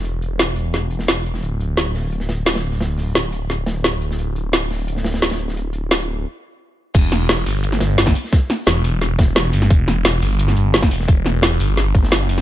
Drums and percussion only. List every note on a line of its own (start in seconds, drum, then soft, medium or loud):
0.05 closed hi-hat medium
0.22 closed hi-hat medium
0.39 snare loud
0.39 closed hi-hat medium
0.56 closed hi-hat medium
0.74 snare soft
0.74 closed hi-hat medium
0.91 closed hi-hat medium
0.99 snare medium
1.08 snare loud
1.08 closed hi-hat medium
1.26 closed hi-hat medium
1.34 snare soft
1.43 closed hi-hat medium
1.60 closed hi-hat medium
1.77 snare loud
1.77 closed hi-hat medium
1.95 snare soft
1.95 open hi-hat medium
2.12 closed hi-hat medium
2.20 snare soft
2.29 snare medium
2.29 closed hi-hat medium
2.46 snare soft
2.46 snare loud
2.46 open hi-hat medium
2.54 snare loud
2.54 closed hi-hat medium
2.72 snare soft
2.72 open hi-hat medium
2.81 snare loud
2.81 closed hi-hat medium
2.97 snare soft
2.97 open hi-hat medium
3.15 snare loud
3.15 closed hi-hat medium
3.33 closed hi-hat medium
3.50 snare soft
3.50 closed hi-hat medium
3.66 snare loud
3.66 closed hi-hat medium
3.84 snare loud
3.84 closed hi-hat medium
4.02 closed hi-hat medium
4.11 snare soft
4.19 closed hi-hat medium
4.36 closed hi-hat medium
4.53 snare loud
4.53 closed hi-hat medium
4.70 snare soft
4.70 open hi-hat medium
4.88 closed hi-hat medium
4.96 snare soft
5.04 snare loud
5.04 closed hi-hat medium
5.12 snare medium
5.12 closed hi-hat medium
5.22 snare loud
5.22 closed hi-hat medium
5.30 snare loud
5.30 closed hi-hat medium
5.39 closed hi-hat medium
5.48 snare soft
5.57 closed hi-hat medium
5.73 closed hi-hat medium
5.91 snare loud
5.91 closed hi-hat medium
6.00 closed hi-hat medium
6.94 kick loud
6.94 closed hi-hat medium
6.94 closed hi-hat loud
6.94 crash loud
7.12 snare soft
7.12 closed hi-hat medium
7.29 snare loud
7.29 closed hi-hat medium
7.29 closed hi-hat loud
7.46 snare soft
7.46 open hi-hat medium
7.63 closed hi-hat medium
7.72 snare soft
7.80 snare loud
7.80 closed hi-hat medium
7.98 snare soft
7.98 snare loud
7.98 closed hi-hat loud
7.98 open hi-hat medium
8.06 kick loud
8.06 snare loud
8.06 snare medium
8.06 closed hi-hat medium
8.15 open hi-hat medium
8.24 snare soft
8.24 open hi-hat medium
8.33 kick loud
8.33 snare loud
8.33 closed hi-hat loud
8.33 closed hi-hat medium
8.50 snare soft
8.50 closed hi-hat medium
8.50 open hi-hat medium
8.67 snare loud
8.67 closed hi-hat loud
8.67 closed hi-hat medium
8.84 closed hi-hat medium
8.84 open hi-hat medium
9.01 snare soft
9.01 closed hi-hat medium
9.19 kick loud
9.19 snare loud
9.19 closed hi-hat medium
9.36 snare loud
9.36 closed hi-hat medium
9.36 closed hi-hat loud
9.53 closed hi-hat medium
9.53 open hi-hat medium
9.62 snare soft
9.71 kick loud
9.71 closed hi-hat medium
9.88 snare soft
9.88 closed hi-hat medium
10.05 snare loud
10.05 closed hi-hat medium
10.22 snare soft
10.22 open hi-hat medium
10.39 closed hi-hat loud
10.39 closed hi-hat medium
10.48 snare soft
10.57 closed hi-hat medium
10.74 snare loud
10.74 closed hi-hat loud
10.74 closed hi-hat medium
10.83 kick loud
10.83 snare soft
10.83 snare medium
10.91 closed hi-hat medium
10.91 open hi-hat medium
11.00 snare soft
11.08 kick loud
11.08 closed hi-hat medium
11.26 snare soft
11.26 closed hi-hat medium
11.42 snare loud
11.42 closed hi-hat medium
11.60 closed hi-hat medium
11.60 open hi-hat medium
11.77 snare soft
11.77 closed hi-hat medium
11.95 kick loud
11.95 closed hi-hat medium
12.03 snare medium
12.12 snare loud
12.12 closed hi-hat medium
12.29 closed hi-hat medium
12.29 open hi-hat medium
12.38 snare soft